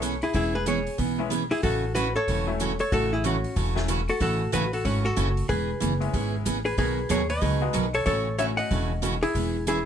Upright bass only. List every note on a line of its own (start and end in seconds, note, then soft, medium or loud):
0.00 0.22 B1 medium
0.34 0.86 E1 medium
0.99 1.50 B1 medium
1.63 2.15 A1 medium
2.28 2.79 E1 medium
2.92 3.43 A1 medium
3.56 4.08 E1 medium
4.21 4.46 A1 medium
4.53 4.80 A1 medium
4.85 5.12 G#1 medium
5.17 5.44 F#1 medium
5.49 5.75 E1 medium
5.82 6.09 F#1 medium
6.14 6.41 G#1 medium
6.46 6.73 A1 medium
6.78 7.04 B1 medium
7.10 7.37 D#2 medium
7.42 7.69 C#2 medium
7.74 8.02 B1 medium
8.07 8.58 A1 medium
8.71 9.22 E1 medium
9.35 9.85 E1 medium